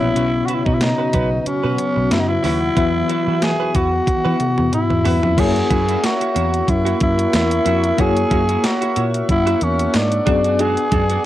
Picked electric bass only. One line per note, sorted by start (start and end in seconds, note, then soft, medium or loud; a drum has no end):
0.01 0.12 A#1 medium
0.16 0.40 B1 loud
0.66 0.91 B2 medium
1.14 1.38 B1 medium
1.46 muted picked electric bass stroke soft
1.64 1.75 B2 medium
1.97 2.08 B1 medium
2.12 2.36 F#2 medium
2.44 2.69 D#2 medium
2.77 3.01 E2 loud
3.28 3.52 E3 medium
3.75 3.99 E2 medium
4.07 muted picked electric bass stroke soft
4.25 4.36 E3 loud
4.58 4.69 E2 medium
4.91 5.02 E2 medium
5.05 5.19 E2 medium
5.23 5.34 F2 medium
5.38 5.62 F#2 loud
5.71 5.95 F#2 loud
6.36 6.60 E2 loud
6.68 6.93 F#2 loud
7.01 7.26 F#2 medium
7.34 7.58 E2 medium
7.66 7.91 F2 loud
7.99 8.23 F#2 loud
8.31 8.56 F#2 medium
8.97 9.21 A#2 medium
9.29 9.54 F#2 loud
9.62 9.86 E2 loud
9.95 10.19 G#2 medium
10.27 10.76 F#2 medium
10.92 11.17 F#2 loud